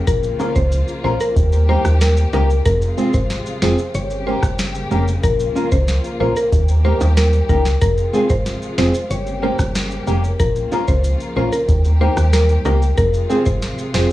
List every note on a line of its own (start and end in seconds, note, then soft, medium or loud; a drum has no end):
0.00 1.34 C#3 medium
0.00 2.62 A#3 medium
0.07 0.34 A#1 loud
0.07 1.35 F3 medium
0.07 1.35 F4 medium
0.07 0.30 A#4 loud
0.07 kick loud
0.07 closed hi-hat medium
0.07 maracas medium
0.23 maracas medium
0.39 0.53 A#3 medium
0.39 0.54 C#4 medium
0.39 0.53 C#4 medium
0.39 0.53 F4 medium
0.39 0.54 F4 medium
0.39 0.53 A#4 medium
0.39 0.54 A#4 medium
0.39 high timbale medium
0.39 maracas medium
0.56 0.83 C#2 medium
0.56 0.67 C5 medium
0.56 kick medium
0.56 maracas medium
0.72 closed hi-hat medium
0.72 maracas medium
0.88 maracas medium
1.04 1.18 A#1 medium
1.04 1.17 A#3 medium
1.04 1.18 C#4 medium
1.04 1.17 C#4 medium
1.04 1.17 F4 medium
1.04 1.19 F4 loud
1.04 1.17 A#4 medium
1.04 1.19 A#4 loud
1.04 1.15 C5 medium
1.20 1.32 A#4 medium
1.20 maracas medium
1.36 1.77 D#2 loud
1.36 2.64 D#3 medium
1.36 2.64 G3 medium
1.36 2.64 G4 medium
1.36 kick loud
1.36 closed hi-hat medium
1.36 maracas medium
1.52 muted nylon-string guitar stroke soft
1.52 maracas soft
1.68 1.83 A#3 medium
1.68 1.82 A#3 medium
1.68 1.82 D#4 medium
1.68 1.83 D#4 medium
1.68 1.82 G4 medium
1.68 1.84 G4 medium
1.68 1.82 A#4 medium
1.68 1.80 C5 medium
1.85 2.26 D#2 loud
1.85 cross-stick loud
1.85 maracas medium
2.01 2.12 A#4 medium
2.01 snare loud
2.01 closed hi-hat medium
2.01 maracas medium
2.17 maracas medium
2.33 2.60 C#2 medium
2.33 2.47 A#3 medium
2.33 2.46 A#3 medium
2.33 2.46 D#4 medium
2.33 2.48 D#4 loud
2.33 2.46 G4 medium
2.33 2.48 G4 loud
2.33 2.44 A#4 medium
2.33 2.46 A#4 medium
2.33 high timbale medium
2.33 maracas medium
2.50 maracas medium
2.66 2.93 F1 loud
2.66 3.93 C3 medium
2.66 3.93 F3 medium
2.66 3.93 G#3 medium
2.66 3.93 F4 medium
2.66 2.77 A#4 loud
2.66 kick loud
2.66 closed hi-hat medium
2.66 maracas medium
2.82 maracas medium
2.97 3.11 G#3 medium
2.97 3.12 C4 medium
2.97 3.11 C4 medium
2.97 3.11 F4 medium
2.97 3.12 F4 medium
2.97 3.11 G#4 medium
2.97 3.13 G#4 medium
2.97 maracas medium
3.14 3.41 G#1 medium
3.14 3.25 C5 medium
3.14 kick loud
3.14 maracas medium
3.30 snare medium
3.30 closed hi-hat medium
3.30 maracas medium
3.46 maracas medium
3.62 3.76 F1 medium
3.62 3.75 G#3 medium
3.62 3.76 C4 medium
3.62 3.75 C4 medium
3.62 3.75 F4 medium
3.62 3.77 F4 medium
3.62 3.75 G#4 medium
3.62 3.77 G#4 medium
3.62 3.74 C5 medium
3.62 snare loud
3.78 maracas medium
3.94 4.35 G1 loud
3.94 6.50 C#3 medium
3.94 5.22 G3 medium
3.94 7.78 A#3 medium
3.94 5.22 G4 medium
3.94 4.06 C#5 medium
3.94 closed hi-hat medium
3.94 maracas medium
4.10 muted nylon-string guitar stroke soft
4.10 maracas medium
4.26 4.41 A#3 medium
4.26 4.40 A#3 medium
4.26 4.40 C#4 medium
4.26 4.41 C#4 medium
4.26 4.40 G4 medium
4.26 4.42 G4 loud
4.26 4.40 A#4 medium
4.26 4.38 C5 medium
4.43 4.83 G1 medium
4.43 kick medium
4.43 cross-stick loud
4.43 maracas medium
4.59 snare loud
4.59 closed hi-hat medium
4.59 maracas medium
4.75 maracas medium
4.91 5.18 F1 medium
4.91 5.05 A#3 medium
4.91 5.04 A#3 medium
4.91 5.04 C#4 medium
4.91 5.06 C#4 medium
4.91 5.04 G4 medium
4.91 5.06 G4 medium
4.91 5.04 A#4 loud
4.91 maracas medium
5.08 maracas medium
5.23 5.51 A#1 loud
5.23 6.51 F3 medium
5.23 6.51 F4 medium
5.23 5.46 A#4 loud
5.23 kick loud
5.23 closed hi-hat medium
5.23 maracas medium
5.40 maracas medium
5.55 5.69 A#3 medium
5.55 5.70 C#4 medium
5.55 5.69 C#4 medium
5.55 5.69 F4 medium
5.55 5.70 F4 medium
5.55 5.69 A#4 medium
5.55 5.71 A#4 medium
5.55 maracas medium
5.72 5.99 C#2 medium
5.72 5.83 C5 medium
5.72 kick loud
5.72 maracas medium
5.88 snare medium
5.88 closed hi-hat medium
5.88 maracas medium
6.04 maracas medium
6.20 6.34 A#1 medium
6.20 6.33 A#3 medium
6.20 6.34 C#4 medium
6.20 6.33 C#4 medium
6.20 6.33 F4 medium
6.20 6.35 F4 medium
6.20 6.33 A#4 medium
6.20 6.35 A#4 medium
6.20 6.31 C5 medium
6.36 6.48 A#4 medium
6.36 maracas medium
6.52 6.93 D#2 loud
6.52 7.80 D#3 medium
6.52 7.80 G3 medium
6.52 7.80 G4 medium
6.52 kick loud
6.52 closed hi-hat medium
6.52 maracas medium
6.68 muted nylon-string guitar stroke soft
6.68 maracas medium
6.84 6.99 A#3 loud
6.84 6.98 A#3 medium
6.84 6.98 D#4 medium
6.84 6.99 D#4 loud
6.84 6.98 G4 medium
6.84 7.00 G4 loud
6.84 6.98 A#4 medium
6.84 6.96 C5 medium
7.01 7.41 D#2 loud
7.01 high timbale medium
7.01 maracas medium
7.17 7.28 A#4 medium
7.17 snare loud
7.17 closed hi-hat medium
7.17 maracas medium
7.33 maracas medium
7.49 7.76 C#2 medium
7.49 7.63 A#3 medium
7.49 7.62 A#3 medium
7.49 7.62 D#4 medium
7.49 7.64 D#4 medium
7.49 7.62 G4 medium
7.49 7.64 G4 medium
7.49 7.60 A#4 medium
7.49 7.62 A#4 medium
7.49 kick loud
7.49 maracas medium
7.65 snare medium
7.65 maracas medium
7.81 8.09 F1 loud
7.81 9.09 C3 medium
7.81 9.09 F3 medium
7.81 9.09 G#3 medium
7.81 9.09 F4 medium
7.81 7.93 A#4 loud
7.81 kick loud
7.81 closed hi-hat medium
7.81 maracas medium
7.98 maracas medium
8.13 8.27 G#3 medium
8.13 8.28 C4 medium
8.13 8.27 C4 medium
8.13 8.27 F4 medium
8.13 8.28 F4 loud
8.13 8.27 G#4 medium
8.13 8.29 G#4 loud
8.13 maracas medium
8.29 8.57 G#1 medium
8.29 8.41 C5 medium
8.29 kick loud
8.29 maracas medium
8.46 snare medium
8.46 closed hi-hat medium
8.46 maracas medium
8.62 maracas medium
8.78 8.92 F1 medium
8.78 8.91 G#3 medium
8.78 8.92 C4 medium
8.78 8.91 C4 medium
8.78 8.91 F4 medium
8.78 8.93 F4 medium
8.78 8.91 G#4 medium
8.78 8.93 G#4 medium
8.78 8.89 C5 medium
8.78 snare loud
8.94 maracas medium
9.10 9.51 G1 loud
9.10 10.38 C#3 medium
9.10 10.38 G3 medium
9.10 11.66 A#3 medium
9.10 10.38 G4 medium
9.10 9.22 C#5 medium
9.10 closed hi-hat medium
9.10 maracas medium
9.26 muted nylon-string guitar stroke soft
9.26 maracas medium
9.42 9.57 A#3 medium
9.42 9.56 A#3 medium
9.42 9.56 C#4 medium
9.42 9.57 C#4 medium
9.42 9.56 G4 medium
9.42 9.58 G4 loud
9.42 9.56 A#4 medium
9.42 9.54 C5 medium
9.59 10.00 G1 loud
9.59 kick medium
9.59 cross-stick loud
9.59 maracas medium
9.75 snare loud
9.75 closed hi-hat medium
9.75 maracas medium
9.91 maracas medium
10.07 10.35 F1 loud
10.07 10.21 A#3 medium
10.07 10.20 A#3 medium
10.07 10.20 C#4 medium
10.07 10.22 C#4 medium
10.07 10.20 G4 medium
10.07 10.22 G4 medium
10.07 10.20 A#4 loud
10.07 maracas medium
10.24 maracas medium
10.40 10.67 A#1 loud
10.40 11.67 C#3 medium
10.40 11.67 F3 medium
10.40 11.68 F4 medium
10.40 10.62 A#4 loud
10.40 kick loud
10.40 closed hi-hat medium
10.40 maracas medium
10.56 maracas medium
10.71 10.85 A#3 medium
10.71 10.86 C#4 medium
10.71 10.85 C#4 medium
10.71 10.85 F4 medium
10.71 10.86 F4 medium
10.71 10.85 A#4 medium
10.71 10.87 A#4 loud
10.71 high timbale medium
10.71 maracas medium
10.88 11.15 C#2 medium
10.88 10.99 C5 medium
10.88 kick medium
10.88 maracas medium
11.04 closed hi-hat medium
11.04 maracas medium
11.20 maracas medium
11.36 11.50 A#1 medium
11.36 11.49 A#3 medium
11.36 11.50 C#4 medium
11.36 11.49 C#4 medium
11.36 11.49 F4 medium
11.36 11.51 F4 medium
11.36 11.49 A#4 medium
11.36 11.51 A#4 loud
11.36 11.48 C5 medium
11.53 11.64 A#4 medium
11.53 maracas medium
11.68 12.09 D#2 loud
11.68 12.96 D#3 medium
11.68 12.96 G3 medium
11.68 12.96 A#3 medium
11.68 12.96 G4 medium
11.68 kick loud
11.68 closed hi-hat medium
11.68 maracas medium
11.84 muted nylon-string guitar stroke medium
11.84 maracas soft
12.00 12.15 A#3 medium
12.00 12.14 A#3 medium
12.00 12.14 D#4 medium
12.00 12.15 D#4 loud
12.00 12.14 G4 medium
12.00 12.16 G4 loud
12.00 12.14 A#4 medium
12.00 12.12 C5 medium
12.17 12.58 D#2 loud
12.17 cross-stick loud
12.17 maracas medium
12.33 12.44 A#4 medium
12.33 snare loud
12.33 closed hi-hat medium
12.33 maracas medium
12.49 maracas medium
12.65 12.93 C#2 medium
12.65 12.79 A#3 medium
12.65 12.78 A#3 medium
12.65 12.78 D#4 medium
12.65 12.80 D#4 medium
12.65 12.78 G4 medium
12.65 12.80 G4 medium
12.65 12.78 A#4 medium
12.65 12.77 A#4 medium
12.65 high timbale medium
12.65 maracas medium
12.82 maracas medium
12.98 13.25 F1 loud
12.98 14.12 C3 medium
12.98 14.12 F3 medium
12.98 14.12 G#3 medium
12.98 14.12 F4 medium
12.98 13.09 A#4 loud
12.98 kick loud
12.98 closed hi-hat medium
12.98 maracas medium
13.14 maracas medium
13.29 13.44 C4 loud
13.29 13.43 C4 medium
13.29 13.43 F4 medium
13.29 13.44 F4 loud
13.29 13.43 G#4 medium
13.29 13.45 G#4 loud
13.29 13.43 C5 medium
13.29 maracas medium
13.46 13.73 G#1 medium
13.46 13.57 C5 medium
13.46 kick medium
13.46 maracas medium
13.62 snare medium
13.62 closed hi-hat medium
13.62 maracas medium
13.78 maracas medium
13.94 14.08 F1 medium
13.94 14.08 C4 medium
13.94 14.07 C4 medium
13.94 14.07 F4 medium
13.94 14.09 F4 medium
13.94 14.07 G#4 medium
13.94 14.09 G#4 medium
13.94 14.07 C5 medium
13.94 14.06 C5 medium
13.94 snare loud